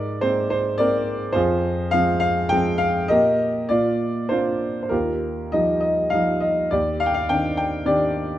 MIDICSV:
0, 0, Header, 1, 2, 480
1, 0, Start_track
1, 0, Key_signature, -3, "major"
1, 0, Tempo, 569801
1, 1136, Time_signature, 3, 2, 24, 8
1, 2106, Tempo, 601805
1, 5466, Tempo, 563910
1, 6890, End_track
2, 0, Start_track
2, 0, Title_t, "Grand piano"
2, 0, Program_c, 0, 0
2, 0, Control_c, 0, 64, 127
2, 0, Note_on_c, 0, 44, 56
2, 0, Note_on_c, 0, 70, 53
2, 0, Note_on_c, 0, 74, 77
2, 180, Note_on_c, 0, 72, 81
2, 182, Note_on_c, 0, 56, 46
2, 187, Note_on_c, 0, 58, 40
2, 188, Note_on_c, 0, 60, 49
2, 199, Note_off_c, 0, 74, 0
2, 401, Note_off_c, 0, 70, 0
2, 410, Note_off_c, 0, 72, 0
2, 423, Note_on_c, 0, 72, 72
2, 646, Note_off_c, 0, 56, 0
2, 649, Note_off_c, 0, 58, 0
2, 649, Note_off_c, 0, 60, 0
2, 655, Note_on_c, 0, 74, 86
2, 662, Note_on_c, 0, 56, 44
2, 668, Note_off_c, 0, 72, 0
2, 668, Note_on_c, 0, 58, 45
2, 670, Note_on_c, 0, 60, 54
2, 673, Note_on_c, 0, 70, 62
2, 1103, Note_off_c, 0, 44, 0
2, 1107, Note_off_c, 0, 70, 0
2, 1116, Note_on_c, 0, 72, 85
2, 1120, Note_off_c, 0, 56, 0
2, 1124, Note_off_c, 0, 58, 0
2, 1125, Note_off_c, 0, 60, 0
2, 1131, Note_on_c, 0, 68, 59
2, 1132, Note_on_c, 0, 65, 62
2, 1144, Note_on_c, 0, 41, 65
2, 1145, Note_off_c, 0, 74, 0
2, 1146, Control_c, 0, 64, 0
2, 1306, Control_c, 0, 64, 127
2, 1610, Note_on_c, 0, 77, 100
2, 1622, Note_off_c, 0, 72, 0
2, 1626, Note_on_c, 0, 53, 50
2, 1630, Note_on_c, 0, 56, 41
2, 1635, Note_on_c, 0, 60, 52
2, 1825, Note_off_c, 0, 65, 0
2, 1825, Note_off_c, 0, 68, 0
2, 1840, Note_off_c, 0, 77, 0
2, 1852, Note_on_c, 0, 77, 93
2, 2097, Note_off_c, 0, 53, 0
2, 2099, Note_off_c, 0, 56, 0
2, 2099, Note_on_c, 0, 79, 100
2, 2102, Note_off_c, 0, 60, 0
2, 2110, Note_off_c, 0, 77, 0
2, 2117, Note_on_c, 0, 53, 52
2, 2119, Note_on_c, 0, 56, 49
2, 2123, Note_on_c, 0, 60, 59
2, 2329, Note_on_c, 0, 77, 86
2, 2344, Note_off_c, 0, 79, 0
2, 2548, Note_off_c, 0, 41, 0
2, 2567, Note_off_c, 0, 53, 0
2, 2568, Note_off_c, 0, 56, 0
2, 2570, Note_off_c, 0, 60, 0
2, 2571, Note_on_c, 0, 75, 87
2, 2577, Note_off_c, 0, 77, 0
2, 2583, Note_on_c, 0, 70, 65
2, 2585, Note_on_c, 0, 67, 61
2, 2586, Control_c, 0, 64, 0
2, 2594, Note_on_c, 0, 46, 61
2, 2728, Control_c, 0, 64, 127
2, 3023, Note_off_c, 0, 70, 0
2, 3024, Note_off_c, 0, 67, 0
2, 3046, Note_off_c, 0, 46, 0
2, 3053, Note_on_c, 0, 74, 80
2, 3061, Control_c, 0, 64, 0
2, 3063, Note_off_c, 0, 75, 0
2, 3065, Note_on_c, 0, 46, 55
2, 3066, Note_on_c, 0, 65, 59
2, 3182, Control_c, 0, 64, 127
2, 3533, Note_on_c, 0, 72, 71
2, 3537, Note_off_c, 0, 65, 0
2, 3544, Note_on_c, 0, 58, 40
2, 3549, Note_on_c, 0, 60, 37
2, 3549, Note_on_c, 0, 65, 49
2, 3550, Note_on_c, 0, 62, 45
2, 3551, Note_off_c, 0, 74, 0
2, 3950, Note_off_c, 0, 72, 0
2, 3962, Note_on_c, 0, 72, 47
2, 4002, Note_off_c, 0, 65, 0
2, 4005, Note_off_c, 0, 46, 0
2, 4014, Note_on_c, 0, 70, 68
2, 4017, Note_off_c, 0, 58, 0
2, 4020, Note_off_c, 0, 60, 0
2, 4020, Note_off_c, 0, 62, 0
2, 4024, Note_off_c, 0, 72, 0
2, 4027, Note_on_c, 0, 39, 54
2, 4028, Note_on_c, 0, 65, 47
2, 4029, Note_on_c, 0, 67, 50
2, 4039, Control_c, 0, 64, 0
2, 4169, Control_c, 0, 64, 127
2, 4515, Note_on_c, 0, 75, 76
2, 4524, Note_off_c, 0, 70, 0
2, 4524, Note_on_c, 0, 53, 40
2, 4525, Note_on_c, 0, 55, 37
2, 4526, Note_on_c, 0, 63, 47
2, 4724, Note_off_c, 0, 65, 0
2, 4724, Note_off_c, 0, 67, 0
2, 4730, Note_off_c, 0, 75, 0
2, 4742, Note_on_c, 0, 75, 69
2, 4978, Note_on_c, 0, 77, 81
2, 4983, Note_off_c, 0, 53, 0
2, 4984, Note_off_c, 0, 55, 0
2, 4984, Note_off_c, 0, 63, 0
2, 4994, Note_off_c, 0, 75, 0
2, 4995, Note_on_c, 0, 53, 43
2, 4998, Note_on_c, 0, 55, 43
2, 5000, Note_on_c, 0, 63, 47
2, 5220, Note_on_c, 0, 75, 71
2, 5230, Note_off_c, 0, 77, 0
2, 5434, Note_off_c, 0, 39, 0
2, 5452, Note_off_c, 0, 53, 0
2, 5454, Note_off_c, 0, 55, 0
2, 5455, Note_off_c, 0, 63, 0
2, 5463, Note_on_c, 0, 74, 77
2, 5467, Note_off_c, 0, 75, 0
2, 5472, Note_on_c, 0, 39, 58
2, 5477, Note_on_c, 0, 67, 51
2, 5478, Control_c, 0, 64, 0
2, 5631, Control_c, 0, 64, 127
2, 5711, Note_on_c, 0, 77, 87
2, 5719, Note_off_c, 0, 74, 0
2, 5763, Note_on_c, 0, 79, 70
2, 5771, Note_off_c, 0, 77, 0
2, 5823, Note_off_c, 0, 79, 0
2, 5831, Note_on_c, 0, 77, 83
2, 5959, Note_on_c, 0, 79, 89
2, 5961, Note_on_c, 0, 51, 45
2, 5963, Note_off_c, 0, 77, 0
2, 5966, Note_on_c, 0, 60, 41
2, 5969, Note_on_c, 0, 62, 50
2, 6169, Note_off_c, 0, 67, 0
2, 6186, Note_off_c, 0, 79, 0
2, 6198, Note_on_c, 0, 79, 80
2, 6422, Note_off_c, 0, 51, 0
2, 6423, Note_off_c, 0, 60, 0
2, 6426, Note_off_c, 0, 62, 0
2, 6435, Note_on_c, 0, 51, 48
2, 6436, Note_on_c, 0, 60, 42
2, 6440, Note_on_c, 0, 62, 51
2, 6442, Note_off_c, 0, 79, 0
2, 6443, Note_on_c, 0, 74, 82
2, 6450, Note_on_c, 0, 67, 57
2, 6874, Note_off_c, 0, 39, 0
2, 6876, Note_off_c, 0, 74, 0
2, 6880, Note_off_c, 0, 67, 0
2, 6890, Note_off_c, 0, 51, 0
2, 6890, Note_off_c, 0, 60, 0
2, 6890, Note_off_c, 0, 62, 0
2, 6890, End_track
0, 0, End_of_file